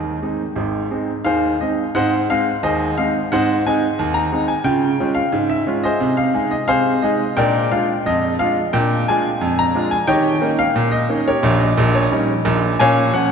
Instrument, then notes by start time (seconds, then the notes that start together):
grand piano
Already playing: D#2 D#3 G#4
0.22 G#3 C4 D#4
0.56 G#1 G#2
0.91 G#3 C4 D#4
1.25 D#2 D#3 G#4 C5 F5
1.61 G#3 C4 D#4 D#5
1.95 G#2 C4 C5 D#5 F#5
2.30 G#3 C4 D#4 F5
2.63 D#2 G#4 C5 D#5
2.98 G#3 C4 D#4 F5
3.32 G#2 C4 C5 D#5 F#5
3.66 G#3 C4 D#4 G#5
3.99 D#2
4.14 A#5
4.32 G#3 C4 D#4
4.48 G#5
4.64 C#3 F4 G5
5.00 G#3 C#4 F4
5.15 F5
5.32 G#2
5.50 E5
5.67 G#3 C#4 F4
5.84 G#4 C5 D#5
6.00 C3
6.17 F5
6.34 G#3 D#4 G#4
6.51 D#5
6.68 C3 G#4 C5 F5
7.02 G#3 D#4 G#4 D#5
7.37 A#2 D4 A#4 D5 G5
7.71 G#3 D4 F4 F5
8.06 F2 D#5
8.39 G#3 D4 F4 F5
8.73 A#2 D4 G5
9.08 G#3 D4 F4 G#5
9.41 F2
9.59 A#5
9.75 G#3 D4 F4
9.91 G#5
10.07 D#3 G4 C#5 D#5 G5
10.42 A#3 C#4 D#4
10.59 F5
10.76 A#2
10.91 D#5
11.09 A#3 C#4 D#4
11.28 G4 A#4 C#5
11.43 A#1 A#2
11.60 D#5
11.77 A#1 A#2
11.95 C#5
12.11 G3 C#4 D#4
12.45 A#1 A#2
12.80 A#2 C#4 C#5 F5 G#5
13.14 F3 C#4 F#5